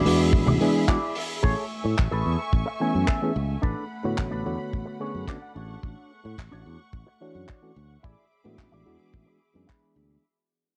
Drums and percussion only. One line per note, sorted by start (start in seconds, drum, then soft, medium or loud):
0.06 open hi-hat loud
0.33 kick loud
0.47 high conga loud
0.61 open hi-hat medium
0.88 kick loud
0.88 clap loud
1.15 open hi-hat loud
1.44 kick loud
1.98 kick loud
1.98 clap medium
2.53 kick loud
3.08 kick loud
3.08 clap loud
3.63 kick loud
4.18 kick loud
4.18 clap loud
4.73 kick medium
5.28 kick loud
5.28 clap loud
5.83 kick loud
6.38 kick loud
6.38 clap loud
6.93 kick loud
7.49 kick loud
7.49 clap loud
8.04 kick loud
8.58 kick loud
8.58 clap loud
9.14 kick loud
9.69 kick loud
9.69 clap loud